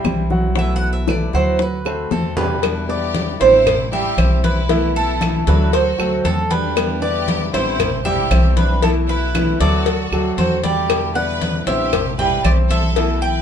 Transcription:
Already playing: grand piano G3 G4 G5
0.04 upright bass B1, steel-string acoustic guitar E3 G3 C4 E4, high bongo, low bongo, high conga, claves
0.30 grand piano F#3 F#4 F#5, high bongo, high conga
0.56 steel-string acoustic guitar B2 E3 A3 B3 E4, grand piano F#3 F#4 F#5, cuban tres E5, high bongo, high conga
0.76 cuban tres F#5
0.82 high conga
0.93 cuban tres E5
1.07 steel-string acoustic guitar E3 A3 B3 E4, grand piano A3 A4 B4, cuban tres D5, high bongo, high conga, claves
1.33 upright bass D2, steel-string acoustic guitar E3 A3 B3 E4, grand piano F#3 F#4 F#5, cuban tres C5, high bongo
1.59 cuban tres B4, muted steel-string acoustic guitar stroke, high bongo, high conga
1.85 grand piano A3 A4 C5, steel-string acoustic guitar A3 C4 F#4, high bongo, high conga, claves
2.11 upright bass E2, steel-string acoustic guitar D3 A3 C4 F#4, violin section C4, cuban tres A4, high bongo, low bongo, high conga
2.36 grand piano G3 G4 G5, violin section D4, cuban tres B4, high bongo, low conga
2.62 steel-string acoustic guitar B2 D3 G3 B3 E4, cowbell, high conga, claves
2.89 grand piano B3 B4 D5, violin section G4, cuban tres D5, high conga
3.14 steel-string acoustic guitar D3 G3 B3 E4, cowbell, high conga
3.40 upright bass A1, steel-string acoustic guitar D3 G3 B3 E4, grand piano C4 C5 E5, violin section E4, cuban tres C5, cowbell, high conga
3.66 muted steel-string acoustic guitar stroke, cowbell, high conga, low conga, claves
3.92 grand piano G3 G4 G5, steel-string acoustic guitar G3 C4 E4, violin section G4, cuban tres E5, high conga
4.18 upright bass B1, steel-string acoustic guitar E3 G3 C4 E4, grand piano C4 C5 E5, cowbell, high conga, claves
4.44 violin section E4, cuban tres B4, cowbell, high conga
4.69 steel-string acoustic guitar B2 E3 A3 B3 E4, grand piano E3 E4 E5, cowbell, high conga
4.95 violin section E4, cuban tres A4, high conga
5.20 steel-string acoustic guitar E3 A3 B3 E4, grand piano E3 E4 E5, cowbell, high conga, claves
5.47 upright bass D2, steel-string acoustic guitar E3 A3 B3 E4, grand piano F#3 F#4 A4, violin section D4, cuban tres B4, cowbell
5.72 violin section F#4, cuban tres C5, muted steel-string acoustic guitar stroke, cowbell, high conga
5.98 upright bass D2, grand piano F#3 F#4 A4, steel-string acoustic guitar A3 C4 F#4, high conga, claves
6.23 upright bass E2, steel-string acoustic guitar D3 A3 C4 F#4, violin section C4, cuban tres A4, cowbell, high conga
6.50 grand piano G3 G5, violin section D4, cuban tres B4, cowbell, high conga
6.75 steel-string acoustic guitar B2 D3 G3 B3 E4, cowbell, high conga, claves
7.01 grand piano B3 B4 D5, violin section G4, cuban tres D5, high conga
7.27 steel-string acoustic guitar D3 G3 B3 E4, cowbell, high conga
7.53 upright bass A1, steel-string acoustic guitar D3 G3 B3 E4, grand piano C4 C5 E5, violin section E4, cuban tres C5, cowbell, high conga
7.79 muted steel-string acoustic guitar stroke, cowbell, high conga, low conga, claves
8.05 grand piano G3 G4 G5, steel-string acoustic guitar G3 C4 E4, violin section G4, cuban tres E5, high conga, low conga
8.31 upright bass B1, steel-string acoustic guitar E3 G3 C4 E4, grand piano C4 C5 E5, cowbell, high conga, claves
8.56 violin section D4, cuban tres B4, cowbell, high conga
8.82 steel-string acoustic guitar B2 E3 A3 B3 E4, grand piano E3 E4 E5, violin section E4, cuban tres A4, cowbell, high conga
9.08 violin section E4, cuban tres B4, high conga
9.35 steel-string acoustic guitar E3 A3 B3 E4, grand piano E3 E4 E5, cowbell, high conga, claves
9.60 upright bass D2, steel-string acoustic guitar E3 A3 B3 E4, grand piano F#3 F#4 A4, violin section F#4, cuban tres D5, cowbell
9.86 muted steel-string acoustic guitar stroke, cowbell, high conga
10.12 upright bass D2, grand piano F#3 F#4 A4, steel-string acoustic guitar A3 C4 F#4, high conga, claves
10.37 upright bass E2, steel-string acoustic guitar D3 A3 C4 F#4, violin section F#4, cuban tres C5, cowbell, high conga
10.63 grand piano G3 G5, violin section G4, cuban tres D5, cowbell, high conga
10.89 steel-string acoustic guitar B2 D3 G3 B3 E4, cowbell, high conga, claves
11.15 grand piano B3 B4 D5, violin section B4, cuban tres F#5, high conga
11.41 steel-string acoustic guitar D3 G3 B3 E4, cowbell, high conga
11.66 upright bass A1, steel-string acoustic guitar D3 G3 B3 E4, grand piano C4 C5 E5, violin section G4, cuban tres E5, cowbell, high conga
11.92 muted steel-string acoustic guitar stroke, cowbell, high conga, low conga, claves
12.18 grand piano G3 G4 G5, steel-string acoustic guitar G3 C4 E4, violin section B4, cuban tres G5, high conga, low conga
12.44 upright bass B1, steel-string acoustic guitar E3 G3 C4 E4, grand piano C4 C5 E5, violin section G4, cuban tres D5, cowbell, high conga, claves
12.70 violin section A4, cuban tres E5, cowbell, high conga
12.96 steel-string acoustic guitar B2 E3 A3 B3 E4, grand piano E3 E4 E5, cowbell, high conga
13.22 violin section B4, cuban tres G5, high conga

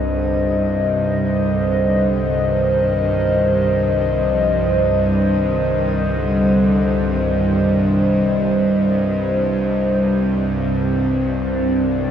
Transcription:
Already playing: synth drone C2 G2, analog synth pad C5 D#5
0.10 bass clarinet D3
0.58 bass clarinet C3
1.52 bass clarinet D3
2.46 bass clarinet D#3
4.31 bass clarinet F3
5.23 bass clarinet D#3
6.18 bass clarinet D3
7.12 bass clarinet D#3
9.90 analog synth pad C4
10.90 analog synth pad D5
11.71 analog synth pad A#4

